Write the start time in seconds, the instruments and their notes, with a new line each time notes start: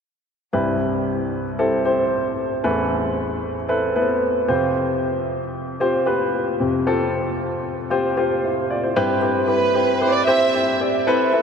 0.53 grand piano C2 G2 C4 E4 G4 B4
1.59 grand piano C4 E4 G4 A4
1.85 grand piano C4 E4 G4 C5
2.64 grand piano A1 E2 C4 E4 A4 B4
3.68 grand piano C4 E4 A4 B4
3.95 grand piano B3 E4 A4 B4
4.02 grand piano C4
4.48 grand piano F2 C3 C4 F4 G4 C5
5.80 grand piano C4 F4 G4 C5
6.06 grand piano C4 F4 G4 B4
6.60 grand piano F2 C3
6.87 grand piano C4 F4 G4 A4
7.90 grand piano C4 F4 G4 C5
8.17 grand piano C4 F4 G4 C5
8.44 grand piano E4 C5
8.70 grand piano F4 D5
8.83 grand piano E4 C5
8.96 grand piano G2 C4 E4 G4 B4
9.21 grand piano C4 E4 G4 B4
9.47 grand piano C4 E4 G4 B4, violin section B4
9.74 grand piano C4 E4 G4 C5
10.01 grand piano C4 E4 G4 B4, violin section C5
10.13 violin section D5
10.26 grand piano C4 E4 G4 C5, violin section E5
10.54 grand piano C4 E4 G4 C5
10.81 grand piano C4 E4 G4 D5
11.07 grand piano C4 E4 A4 B4
11.33 grand piano C4 E4 A4 B4